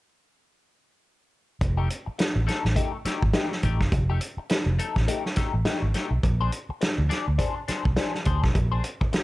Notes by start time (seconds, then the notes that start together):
1.61 F1, muted clean electric guitar stroke, kick, closed hi-hat
1.77 A3 D#4 G4
1.89 muted clean electric guitar stroke, closed hi-hat
2.06 muted clean electric guitar stroke, muted fingered electric bass stroke
2.19 muted clean electric guitar stroke, snare, closed hi-hat
2.36 A1
2.47 A3 D#4 A4, snare, closed hi-hat
2.65 A1, muted clean electric guitar stroke, snare
2.76 A3 D#4 G4, kick, closed hi-hat
2.93 muted clean electric guitar stroke
3.05 A3 D#4 G4, muted fingered electric bass stroke, snare, closed hi-hat
3.22 G#1, muted clean electric guitar stroke, kick
3.33 A3 D#4 G4, snare, closed hi-hat
3.52 muted clean electric guitar stroke, snare
3.63 A1 A3 D#4 G4, kick, closed hi-hat
3.80 F#1, muted clean electric guitar stroke, kick, snare
3.92 F1, muted clean electric guitar stroke, kick, closed hi-hat
4.10 A3 D#4 G4
4.21 muted clean electric guitar stroke, closed hi-hat
4.37 muted fingered electric bass stroke, muted clean electric guitar stroke
4.49 muted clean electric guitar stroke, snare, closed hi-hat
4.66 F1
4.79 A3 D#4 A4, closed hi-hat
4.96 A1, muted clean electric guitar stroke, kick, snare
5.08 A3 D#4 G4, closed hi-hat
5.25 muted clean electric guitar stroke, snare
5.36 A3 D#4 G4, muted fingered electric bass stroke, kick, snare, closed hi-hat
5.54 A1, muted clean electric guitar stroke
5.65 A3 D#4 G4, snare, closed hi-hat
5.82 G#1, muted clean electric guitar stroke
5.94 A3 D#4 G4, snare, closed hi-hat
6.11 B1, muted clean electric guitar stroke
6.23 A#1, muted clean electric guitar stroke, kick, closed hi-hat
6.41 D4 G#4 C5
6.52 muted clean electric guitar stroke, closed hi-hat
6.69 muted fingered electric bass stroke, muted clean electric guitar stroke
6.81 muted clean electric guitar stroke, snare, closed hi-hat
6.98 D2
7.09 D4 G#4 D5, snare, closed hi-hat
7.28 D2, muted clean electric guitar stroke
7.38 D4 G#4 C5, kick, closed hi-hat
7.56 muted clean electric guitar stroke
7.68 D4 G#4 C5, muted fingered electric bass stroke, snare, closed hi-hat
7.85 C2, muted clean electric guitar stroke, kick
7.96 D4 G#4 C5, snare, closed hi-hat
8.14 muted clean electric guitar stroke, snare
8.25 D2 D4 G#4 C5, kick, closed hi-hat
8.43 B1, muted clean electric guitar stroke, kick, snare
8.54 A#1, muted clean electric guitar stroke, kick, closed hi-hat
8.72 D4 G#4 C5
8.84 muted clean electric guitar stroke, closed hi-hat
9.01 muted clean electric guitar stroke, muted fingered electric bass stroke, kick
9.13 muted clean electric guitar stroke, snare, closed hi-hat